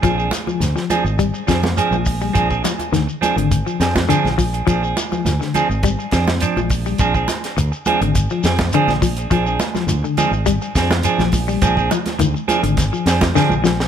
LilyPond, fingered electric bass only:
\new Staff \with { instrumentName = "Fingered electric bass" } { \clef bass \time 4/4 \key bes \mixolydian \tempo 4 = 104 bes,,8 r8 d,16 r8 aes,,8 r16 f,8 r16 bes,,8. | bes,,8 r8 d,16 r8 aes,,8 r16 f,8 r16 bes,,8. | bes,,8 r8 d,16 r8 aes,,8 r16 f,8 r16 bes,,8. | bes,,8 r8 d,16 r8 aes,,8 r16 f,8 r16 bes,,8. |
bes,,8 r8 d,16 r8 aes,,8 r16 f,8 r16 bes,,8. | bes,,8 r8 d,16 r8 aes,,8 r16 f,8 r16 bes,,8. | }